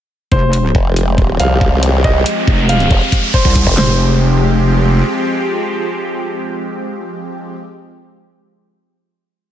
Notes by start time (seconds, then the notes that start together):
0.32 F1 F3 G#3 C4 G4 C5, kick, riser
0.53 closed hi-hat
0.75 F1, kick
0.96 closed hi-hat
1.18 D#1, kick
1.40 C2 F5, closed hi-hat
1.61 kick
1.83 closed hi-hat
2.04 D#5, kick
2.26 closed hi-hat
2.47 F1, kick
2.69 F5, closed hi-hat
2.80 closed hi-hat
2.91 F1, kick
3.12 kick, closed hi-hat
3.34 C5, kick
3.45 C2, kick
3.55 kick, closed hi-hat
3.67 F1, kick
3.77 F1 F3 G#3 C4 G4 C5, snare, clap, floor tom